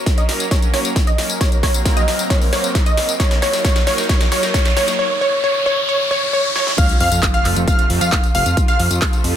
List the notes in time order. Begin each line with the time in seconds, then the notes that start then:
Already playing: riser
0.06 F#3 A#3 C#4 A#4, kick, snare, closed hi-hat, tambourine
0.18 D#5, closed hi-hat, tambourine
0.29 F#3 A#3 C#4 A#4, snare, open hi-hat
0.40 closed hi-hat, tambourine
0.51 F#3 A#3 C#4 A#4 C#5, kick, snare, closed hi-hat, tambourine
0.62 closed hi-hat, tambourine
0.74 F#3 A#3 C#4 A#4 C#5, snare, open hi-hat
0.85 closed hi-hat, tambourine
0.96 kick, snare, closed hi-hat, tambourine
1.07 D#5, closed hi-hat, tambourine
1.18 F#3 A#3 C#4 A#4, snare, open hi-hat
1.30 closed hi-hat, tambourine
1.41 F#3 A#3 C4 A#4 C#5, kick, snare, closed hi-hat, tambourine
1.52 closed hi-hat, tambourine
1.63 C#5, kick, snare, open hi-hat
1.74 F#3 A#3 C4 A#4, closed hi-hat, tambourine
1.85 F#3 A#3 C4 A#4, kick, snare, closed hi-hat, tambourine
1.97 D#5, closed hi-hat, tambourine
2.08 F#3 A#3 C4 A#4, snare, open hi-hat
2.19 closed hi-hat, tambourine
2.30 F#3 A#3 C4 A#4 C#5, kick, snare, closed hi-hat, tambourine
2.42 open hi-hat, tambourine
2.53 F#3 A#3 C4 A#4 C#5, snare, open hi-hat
2.64 closed hi-hat, tambourine
2.75 kick, snare, closed hi-hat, tambourine
2.86 D#5, closed hi-hat, tambourine
2.97 F#3 A#3 C4 A#4, snare, open hi-hat
3.09 closed hi-hat, tambourine
3.20 F#3 A#3 D#4 A#4 C#5, kick, snare, closed hi-hat, tambourine
3.31 snare, closed hi-hat, tambourine
3.42 C#5, snare, open hi-hat
3.53 F#3 A#3 D#4 A#4, snare, closed hi-hat, tambourine
3.65 F#3 A#3 D#4 A#4 C#5, kick, snare, closed hi-hat, tambourine
3.76 snare, closed hi-hat, tambourine
3.87 F#3 A#3 D#4 A#4 C#5, snare, open hi-hat
3.98 snare, closed hi-hat, tambourine
4.09 F#3 A#3 D#4 A#4 C#5, kick, snare, closed hi-hat, tambourine
4.21 snare, closed hi-hat, tambourine
4.32 F#3 A#3 D#4 A#4 C#5, snare, open hi-hat
4.43 snare, closed hi-hat, tambourine
4.54 C#5, kick, snare, closed hi-hat, tambourine
4.65 snare, closed hi-hat, tambourine
4.77 F#3 A#3 D#4 A#4 C#5, snare, open hi-hat
4.88 snare, closed hi-hat, tambourine
4.99 C#5
5.21 C#5
5.44 C#5
5.66 C#5
5.89 C#5
6.11 C#5
6.33 C#5
6.56 C#5, snare
6.67 snare
6.78 C3 F3 A3 F4 F5 F6, kick, closed hi-hat, crash, tambourine, sub drop
6.89 closed hi-hat, tambourine
7.00 F2 F5 F6, open hi-hat
7.12 F2 C3 F3 A3 F4, closed hi-hat, tambourine
7.23 C3 F3 A3 F4, kick, clap, closed hi-hat, tambourine
7.34 F5 F6, closed hi-hat, tambourine
7.45 F2 C3 F3 A3 F4, clap, open hi-hat
7.56 F2, closed hi-hat, tambourine
7.68 C3 F3 A3 F4 F5 F6, kick, closed hi-hat, tambourine
7.79 closed hi-hat, tambourine
7.90 F2 C3 F3 A3 F4, open hi-hat
8.01 F2 F5 F6, closed hi-hat, tambourine
8.12 kick, clap, closed hi-hat, tambourine
8.24 closed hi-hat, tambourine
8.35 F1 C3 F3 A3 F4 F5 F6, open hi-hat
8.46 F2, closed hi-hat, tambourine
8.57 C3 F3 A3 F4, kick, closed hi-hat, tambourine
8.68 F5 F6, closed hi-hat, tambourine
8.79 F2, open hi-hat
8.91 F2 C3 F3 A3 F4, closed hi-hat, tambourine
9.02 C3 F3 A3 F4, kick, clap, closed hi-hat, tambourine
9.13 closed hi-hat, tambourine
9.24 F2 C3 F3 A3 F4, open hi-hat